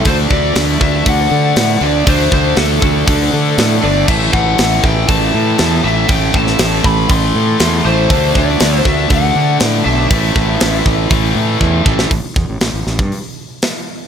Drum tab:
CC |----------------|----------------|x---------------|----------------|
HH |o---o---o---o---|o---o---o---o---|----o---o---o---|o---o---o---o---|
SD |----o-------o---|----o-------o---|----o-------o---|---oo-------o---|
BD |o-o---o-o-------|o-o---o-o-------|o-o---o-o-------|o-o---o-o-------|

CC |----------------|----------------|----------------|
HH |o---o---o---o---|o---o---o-------|o---o---o---o---|
SD |----o-------o---|----o----------o|----o-o-----o---|
BD |o-o---o-o-------|o-o---o-o---o-o-|o-o----o--------|